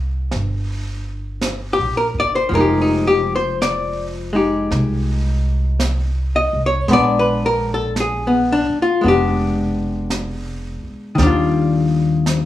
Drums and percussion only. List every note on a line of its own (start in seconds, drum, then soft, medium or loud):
0.31 brush sweep soft
0.31 snare soft
1.41 brush sweep soft
1.41 snare soft
1.41 hi-hat pedal medium
2.52 brush sweep soft
3.62 brush sweep soft
3.62 snare soft
3.62 hi-hat pedal medium
4.71 brush sweep soft
4.71 snare soft
5.80 brush sweep soft
5.80 snare soft
5.80 hi-hat pedal medium
6.88 brush sweep soft
6.88 snare soft
7.96 brush sweep soft
7.96 snare soft
7.96 hi-hat pedal medium
9.03 brush sweep soft
10.10 brush sweep soft
10.10 snare soft
10.10 hi-hat pedal soft
11.18 brush sweep soft
11.18 snare soft
12.26 brush sweep soft
12.26 snare soft
12.26 hi-hat pedal medium